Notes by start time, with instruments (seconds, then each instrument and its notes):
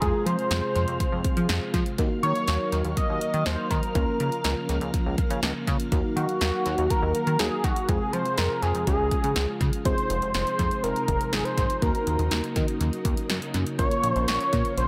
0.01 analog synth bass F2, string machine C3 F3 G#3 F5, fm electric piano G#3 C4 F4 G#4, analog synth lead G#4, kick, closed hi-hat
0.26 analog synth bass F3, analog synth lead C5, closed hi-hat
0.39 closed hi-hat
0.51 analog synth bass F2, snare, closed hi-hat
0.75 analog synth bass F2, closed hi-hat
0.88 analog synth bass F2, closed hi-hat
1.00 kick, closed hi-hat
1.12 analog synth bass F2
1.24 kick, closed hi-hat
1.37 analog synth bass F3, closed hi-hat
1.49 analog synth bass F2, snare, closed hi-hat
1.74 analog synth bass F3, kick, closed hi-hat
1.86 closed hi-hat
1.98 analog synth bass D#2, string machine D#3 F#3 A#3, fm electric piano A#3 D#4 F#4 A#4, kick, closed hi-hat
2.23 analog synth bass D#3, analog synth lead C#5, closed hi-hat
2.35 closed hi-hat
2.48 analog synth bass D#2, snare, closed hi-hat
2.72 analog synth bass D#2, closed hi-hat
2.85 analog synth bass D#2, closed hi-hat
2.97 analog synth lead D#5, kick, closed hi-hat
3.09 analog synth bass D#2
3.21 closed hi-hat
3.34 analog synth bass D#3, closed hi-hat
3.46 analog synth bass D#2, analog synth lead C5, snare, closed hi-hat
3.70 analog synth bass D#3, analog synth lead A#4, kick, closed hi-hat
3.83 closed hi-hat
3.95 analog synth bass C#2, string machine C#3 F3, fm electric piano A#3 C#4 F4 A#4, kick, closed hi-hat
4.20 analog synth bass C#3, closed hi-hat
4.32 closed hi-hat
4.44 analog synth bass C#2, snare, closed hi-hat
4.69 analog synth bass C#2, closed hi-hat
4.81 analog synth bass C#2, closed hi-hat
4.94 kick, closed hi-hat
5.06 analog synth bass C#2
5.18 kick, closed hi-hat
5.30 analog synth bass C#3, closed hi-hat
5.43 analog synth bass C#2, snare, closed hi-hat
5.67 analog synth bass C#3, kick, closed hi-hat
5.80 closed hi-hat
5.92 analog synth bass D#2, string machine D#3 F#3, fm electric piano A#3 D#4 F#4 A#4, kick, closed hi-hat
6.16 analog synth bass D#3, analog synth lead F#4, closed hi-hat
6.29 closed hi-hat
6.41 analog synth bass D#2, snare, closed hi-hat
6.66 analog synth bass D#2, closed hi-hat
6.78 analog synth bass D#2, closed hi-hat
6.90 analog synth lead A#4, kick, closed hi-hat
7.02 analog synth bass D#2
7.14 analog synth lead A#4, closed hi-hat
7.27 analog synth bass D#3, closed hi-hat
7.39 analog synth bass D#2, fm electric piano A#3 D#4 F#4 A#4, analog synth lead G#4, snare, closed hi-hat
7.64 analog synth bass D#3, analog synth lead F#4, kick, closed hi-hat
7.76 closed hi-hat
7.88 analog synth bass F2, string machine C3 F3 G#3, fm electric piano G#3 C4 F4 G#4, analog synth lead G#4, kick, closed hi-hat
8.13 analog synth bass F3, analog synth lead C5, closed hi-hat
8.26 closed hi-hat
8.38 analog synth bass F2, analog synth lead A#4, snare, closed hi-hat
8.62 analog synth bass F2, analog synth lead G#4, closed hi-hat
8.75 analog synth bass F2, closed hi-hat
8.87 analog synth bass C#2, string machine C#3 F3, fm electric piano G#3 C#4 F4 G#4, analog synth lead G#4, kick, closed hi-hat
8.99 analog synth bass C#2
9.11 kick, closed hi-hat
9.24 analog synth bass C#3, closed hi-hat
9.36 analog synth bass C#2, snare, closed hi-hat
9.61 analog synth bass C#3, kick, closed hi-hat
9.73 closed hi-hat
9.85 analog synth bass F1, string machine C3 F3 G#3 D#4, fm electric piano G#3 C4 F4 G#4, analog synth lead C5, kick, closed hi-hat
9.98 closed hi-hat
10.10 analog synth bass F1, closed hi-hat
10.22 closed hi-hat
10.34 analog synth bass F1, analog synth lead C5, snare, closed hi-hat
10.47 closed hi-hat
10.59 analog synth bass F2, kick, closed hi-hat
10.71 closed hi-hat
10.83 analog synth bass F1, analog synth lead A#4, closed hi-hat
10.96 closed hi-hat
11.08 analog synth bass F1, kick, closed hi-hat
11.21 closed hi-hat
11.32 analog synth bass G#1, analog synth lead G#4, snare, closed hi-hat
11.44 analog synth lead C5, closed hi-hat
11.57 analog synth bass G#1, kick, closed hi-hat
11.70 closed hi-hat
11.82 analog synth bass D#2, string machine C#3 F#3 A#3, fm electric piano A#3 D#4 F#4 A#4, analog synth lead A#4, kick, closed hi-hat
11.95 closed hi-hat
12.07 analog synth bass D#2, closed hi-hat
12.19 analog synth bass D#2, closed hi-hat
12.31 analog synth bass D#2, snare, closed hi-hat
12.44 closed hi-hat
12.56 analog synth bass D#3, kick, closed hi-hat
12.68 closed hi-hat
12.80 analog synth bass D#2, closed hi-hat
12.93 closed hi-hat
13.05 analog synth bass D#2, kick, closed hi-hat
13.17 closed hi-hat
13.30 analog synth bass F#2, snare, closed hi-hat
13.42 closed hi-hat
13.54 analog synth bass F#2, closed hi-hat
13.67 closed hi-hat
13.78 analog synth bass A#1, string machine F3 A#3 F4, fm electric piano A#3 C#4 F4 A#4, analog synth lead C#5, kick, closed hi-hat
13.91 closed hi-hat
14.03 analog synth bass A#1, closed hi-hat
14.12 analog synth bass A#1, analog synth lead C5, closed hi-hat
14.28 analog synth bass A#1, analog synth lead C#5, snare, closed hi-hat
14.41 closed hi-hat
14.53 analog synth bass A#2, kick, closed hi-hat
14.65 closed hi-hat
14.77 analog synth bass A#1, analog synth lead C5, closed hi-hat